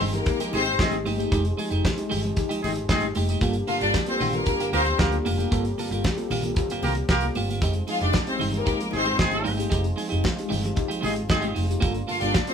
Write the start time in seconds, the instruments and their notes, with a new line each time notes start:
Already playing: french horn section F3 G#3 C4 D#4 G4
0.00 fingered electric bass G1, tine electric piano F3, clean electric guitar G#3 D#4 G4, open hi-hat, low conga
0.13 tine electric piano G#3 D#4 G4, string section A#3 A#4, muted clean electric guitar stroke, closed hi-hat, low conga
0.25 tine electric piano D#4 G4, muted clean electric guitar stroke, kick, closed hi-hat
0.39 tine electric piano F3, clean electric guitar G#3 D#4 G4, closed hi-hat
0.51 fingered electric bass G#1, clean electric guitar G#3 D#4 G4, string section C4 C5, horn section C4 D#4 G#4, tine electric piano D#4 G4, open hi-hat, muted conga
0.66 muted clean electric guitar stroke, closed hi-hat
0.79 fingered electric bass G#1, horn section C4 D#4 G#4, kick, snare, high conga
0.91 tine electric piano G#3 D#4 G4, muted clean electric guitar stroke, closed hi-hat
1.04 fingered electric bass G1, tine electric piano F3, clean electric guitar G#3 D#4 G4, open hi-hat, high conga
1.17 tine electric piano G#3 D#4 G4, clean electric guitar G#3 D#4 G4, closed hi-hat, high conga
1.32 fingered electric bass F1, clean electric guitar G#3 D#4 G4, tine electric piano G#3 D#4 G4, kick, closed hi-hat, muted conga
1.44 muted clean electric guitar stroke, closed hi-hat
1.58 tine electric piano F3, clean electric guitar G#3 D#4 G#4, open hi-hat, muted conga
1.70 fingered electric bass F1, tine electric piano G#3 D#4 G4, clean electric guitar G#3 D#4 G4, closed hi-hat
1.85 kick, snare, high conga
1.97 tine electric piano G#3 D#4 G4, muted clean electric guitar stroke, closed hi-hat
2.10 fingered electric bass G1, tine electric piano F3, clean electric guitar G#3 D#4 G4, open hi-hat, low conga
2.23 tine electric piano G#3 D#4 G4, muted clean electric guitar stroke, closed hi-hat, low conga
2.36 tine electric piano D#4 G4, muted clean electric guitar stroke, kick, closed hi-hat, low conga
2.49 tine electric piano F3, clean electric guitar G#3 D#4 G4, closed hi-hat
2.62 fingered electric bass G#1, horn section C4 D#4 G#4, tine electric piano D#4 G4, muted clean electric guitar stroke, open hi-hat, muted conga, low conga
2.76 muted clean electric guitar stroke, closed hi-hat
2.89 fingered electric bass G#1, horn section C4 D#4 G#4, muted clean electric guitar stroke, kick, snare, high conga
3.00 tine electric piano G#3 D#4 G4, muted clean electric guitar stroke, closed hi-hat
3.15 fingered electric bass F1, clean electric guitar G#3 D#4 G4, open hi-hat, high conga
3.29 tine electric piano F3, clean electric guitar G#3 D#4 G4, closed hi-hat, high conga
3.41 fingered electric bass G1, french horn section G3 A#3 D4, tine electric piano A#3 F4 A4, clean electric guitar A#3 F4 G4, kick, closed hi-hat, muted conga
3.53 closed hi-hat
3.67 tine electric piano G2 D3, clean electric guitar A#3 F4 A4, string section F4 F5, open hi-hat, muted conga
3.81 fingered electric bass G1, tine electric piano A#3 F4 A4, clean electric guitar A#3 F4 G4, string section D4 D5, closed hi-hat
3.94 kick, snare, high conga
4.06 tine electric piano A#3 F4 A4, string section C4 C5, muted clean electric guitar stroke, closed hi-hat
4.20 fingered electric bass A#1, tine electric piano G2 D3, clean electric guitar A#3 F4 G4, open hi-hat, low conga
4.33 tine electric piano A#3 F4 A4, string section A#3 A#4, muted clean electric guitar stroke, closed hi-hat, low conga
4.46 tine electric piano F4 A4, muted clean electric guitar stroke, kick, closed hi-hat
4.60 tine electric piano G2 D3, clean electric guitar A#3 F4 G4, closed hi-hat
4.73 fingered electric bass D2, clean electric guitar A#3 F4 G4, string section C4 C5, horn section F4 G4 A#4, tine electric piano F4 A4, open hi-hat, muted conga
4.86 muted clean electric guitar stroke, closed hi-hat
4.98 fingered electric bass D2, horn section F4 G4 A#4, kick, snare, high conga
5.12 tine electric piano A#3 F4 A4, muted clean electric guitar stroke, closed hi-hat
5.25 fingered electric bass F1, tine electric piano G2 D3, clean electric guitar A#3 F4 G4, open hi-hat, high conga
5.38 tine electric piano A#3 F4 A4, clean electric guitar A#3 F4 G4, closed hi-hat, high conga
5.51 fingered electric bass G1, clean electric guitar A#3 F4 G4, tine electric piano A#3 F4 A4, french horn section C4, kick, closed hi-hat, muted conga
5.64 muted clean electric guitar stroke, closed hi-hat
5.78 tine electric piano G2 D3, clean electric guitar A#3 F4 A4, open hi-hat, muted conga
5.91 fingered electric bass G1, tine electric piano A#3 F4 A4, clean electric guitar A#3 F4 G4, closed hi-hat
6.04 kick, snare, high conga
6.17 tine electric piano A#3 F4 A4, muted clean electric guitar stroke, closed hi-hat
6.30 fingered electric bass A#1, tine electric piano G2 D3, clean electric guitar A#3 F4 G4, open hi-hat, low conga
6.43 tine electric piano A#3 F4 A4, muted clean electric guitar stroke, closed hi-hat, low conga
6.55 tine electric piano F4 A4, muted clean electric guitar stroke, kick, closed hi-hat, low conga
6.70 tine electric piano G2 D3, clean electric guitar A#3 F4 G4, closed hi-hat
6.83 fingered electric bass C2, clean electric guitar A#3 F4 G4, horn section F4 G4 A#4, tine electric piano F4 A4, open hi-hat, muted conga, low conga
6.95 muted clean electric guitar stroke, closed hi-hat
7.08 fingered electric bass C2, horn section F4 G4 A#4, kick, snare, high conga
7.21 tine electric piano A#3 F4 A4, muted clean electric guitar stroke, closed hi-hat
7.35 fingered electric bass G1, clean electric guitar A#3 F4 G4, open hi-hat, high conga
7.47 tine electric piano G2 D3, clean electric guitar A#3 F4 G4, closed hi-hat, high conga
7.61 fingered electric bass F1, tine electric piano G#3 D#4 G4, clean electric guitar G#3 D#4 G4, french horn section G#3 D#4 F4, kick, closed hi-hat, muted conga
7.73 muted clean electric guitar stroke, closed hi-hat
7.87 tine electric piano F3, clean electric guitar G#3 D#4 G#4, string section F4 F5, open hi-hat, muted conga
8.01 fingered electric bass F1, tine electric piano G#3 D#4 G4, clean electric guitar G#3 D#4 G4, string section D4 D5, closed hi-hat
8.13 kick, snare, high conga
8.27 tine electric piano G#3 D#4 G4, string section C4 C5, muted clean electric guitar stroke, closed hi-hat
8.39 fingered electric bass G1, tine electric piano F3, clean electric guitar G#3 D#4 G4, open hi-hat, low conga
8.51 tine electric piano G#3 D#4 G4, string section A#4, muted clean electric guitar stroke, closed hi-hat, low conga
8.55 string section A#3
8.66 clean electric guitar G#3 D#4 G4, tine electric piano D#4 G4, kick, closed hi-hat
8.80 tine electric piano F3, muted clean electric guitar stroke, closed hi-hat
8.91 fingered electric bass G#1, horn section C4 D#4 G#4, string section C4, tine electric piano D#4 G4, muted clean electric guitar stroke, open hi-hat, muted conga
8.95 string section C5
9.05 clean electric guitar G#3 D#4 G4, closed hi-hat
9.17 fingered electric bass G#1, horn section C4 D#4 G#4, muted clean electric guitar stroke, kick, snare, high conga
9.31 tine electric piano G#3 D#4 G4, muted clean electric guitar stroke, closed hi-hat
9.44 fingered electric bass G1, tine electric piano F3, clean electric guitar G#3 D#4 G4, open hi-hat, high conga
9.57 clean electric guitar G#3 D#4 G4, tine electric piano G#3 D#4 G4, closed hi-hat, high conga
9.70 fingered electric bass F1, clean electric guitar G#3 D#4 G4, tine electric piano G#3 D#4 G4, kick, closed hi-hat, muted conga
9.82 muted clean electric guitar stroke, closed hi-hat
9.96 tine electric piano F3, clean electric guitar G#3 D#4 G#4, open hi-hat, muted conga
10.09 fingered electric bass F1, clean electric guitar G#3 D#4 G4, tine electric piano G#3 D#4 G4, closed hi-hat
10.24 kick, snare, high conga
10.36 tine electric piano G#3 D#4 G4, muted clean electric guitar stroke, closed hi-hat
10.49 fingered electric bass G1, clean electric guitar G#3 D#4 G4, open hi-hat, low conga
10.62 tine electric piano G#3 D#4 G4, muted clean electric guitar stroke, closed hi-hat, low conga
10.76 tine electric piano D#4 G4, muted clean electric guitar stroke, kick, closed hi-hat, low conga
10.88 tine electric piano F3, clean electric guitar G#3 D#4 G4, closed hi-hat
11.01 fingered electric bass G#1, clean electric guitar G#3 D#4 G4, horn section C4 D#4 G#4, tine electric piano D#4, open hi-hat, muted conga, low conga
11.06 tine electric piano G4
11.15 muted clean electric guitar stroke, closed hi-hat
11.29 fingered electric bass G#1, horn section C4 D#4 G#4, muted clean electric guitar stroke, kick, snare, high conga
11.41 clean electric guitar G#3 D#4 G4, tine electric piano G#3 D#4, closed hi-hat
11.45 tine electric piano G4
11.54 fingered electric bass F1, tine electric piano F3, clean electric guitar G#3 D#4 G4, open hi-hat, high conga
11.67 tine electric piano G#3, muted clean electric guitar stroke, closed hi-hat, high conga
11.71 tine electric piano D#4 G4
11.80 fingered electric bass G1, french horn section F3 G3 A#3 D4, clean electric guitar A#3 F4 G4, tine electric piano A#3 F4 A4, kick, closed hi-hat, muted conga
11.93 muted clean electric guitar stroke, closed hi-hat
12.07 tine electric piano G2 D3, clean electric guitar A#3 F4 A4, string section F4 F5, open hi-hat, muted conga
12.20 fingered electric bass G1, clean electric guitar A#3 F4 G4, tine electric piano A#3 F4, string section D4 D5, closed hi-hat
12.24 tine electric piano A4
12.34 kick, snare, high conga
12.47 tine electric piano A#3 F4, string section C4 C5, muted clean electric guitar stroke, closed hi-hat